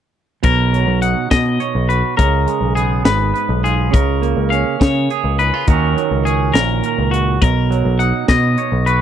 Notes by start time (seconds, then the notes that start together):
0.43 B1 B2 A#4, kick, closed hi-hat
0.73 F#3, closed hi-hat
0.87 B1
1.02 D#4 F#5, closed hi-hat
1.31 B2 D#5, kick, snare, closed hi-hat
1.60 C#5, closed hi-hat
1.75 B1
1.89 F#4 B4, closed hi-hat
2.17 C#2 C#3 A#4, kick, closed hi-hat
2.47 G#3, closed hi-hat
2.61 B1
2.75 B3 G#4, closed hi-hat
3.05 G#1 G#2 B4, snare, closed hi-hat
3.34 B4, closed hi-hat
3.49 B1
3.64 F4 G#4, closed hi-hat
3.91 C#2 C#3 A#4, kick, closed hi-hat
4.22 A#3, closed hi-hat
4.37 C#2
4.50 C#4 F5, closed hi-hat
4.80 C#3 C#5, kick, snare, closed hi-hat
5.10 G#4, closed hi-hat
5.24 C#2
5.39 D#4 B4, closed hi-hat
5.54 F4
5.67 D#2 D#3 F#3 C#4 F#4 A#4, kick, closed hi-hat
5.96 F#3, closed hi-hat
6.11 C#2
6.25 C#4 G#4, closed hi-hat
6.53 A#1 A#2 A#4, snare, closed hi-hat
6.84 A#4, closed hi-hat
6.98 C#2
7.11 F#4, closed hi-hat
7.41 B1 B2 A#4, kick, closed hi-hat
7.70 F#3, closed hi-hat
7.85 B1
7.99 D#4 F#5, closed hi-hat
8.28 B2 D#5, kick, snare, closed hi-hat
8.58 C#5, closed hi-hat
8.72 B1
8.86 F#4 B4, closed hi-hat